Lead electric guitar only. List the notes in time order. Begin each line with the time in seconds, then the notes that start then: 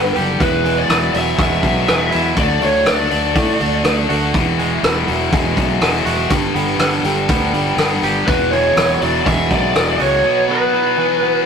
Already playing: B4
0.41 B4
0.78 D5
1.16 E5
1.41 E5
2.40 D5
2.64 C#5
2.90 D5
8.27 B4
8.51 C#5
9.02 D5
9.27 E5
9.53 D5
10.02 C#5
10.51 B4